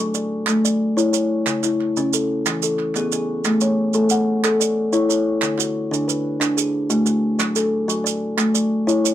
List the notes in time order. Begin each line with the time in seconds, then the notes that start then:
Already playing: A4
0.00 F#3
0.14 D5, maracas
0.47 A3, clap, maracas
0.65 D5, maracas
0.97 E4 C#5, maracas
1.13 C#5, maracas
1.46 C#3, clap, maracas
1.63 E4, clap, maracas
1.81 clap
1.97 C#3 C#4, maracas
2.13 A4, maracas
2.46 E3, clap, maracas
2.62 A4, maracas
2.79 clap
2.95 B3 G#4, clap, maracas
3.12 G#4, maracas
3.44 A3, clap, maracas
3.61 C#5, clap, maracas
3.94 A3 A4, maracas
4.10 F#5, maracas
4.44 A4, clap, maracas
4.60 D5, maracas
4.93 E4 C#5, maracas
5.09 C#5, maracas
5.42 D3, clap, maracas
5.58 F#4, clap, maracas
5.91 D3 D4, maracas
6.08 B4, maracas
6.40 D4, clap, maracas
6.57 G#4, maracas
6.90 A3 F#4, maracas
7.06 F#4, maracas
7.39 F#3, clap, maracas
7.56 A4, clap, maracas
7.88 F#3 F#4, maracas
8.04 D5, maracas
8.37 A3, clap, maracas
8.54 D5, maracas
8.87 E4 C#5, maracas
9.04 C#5, maracas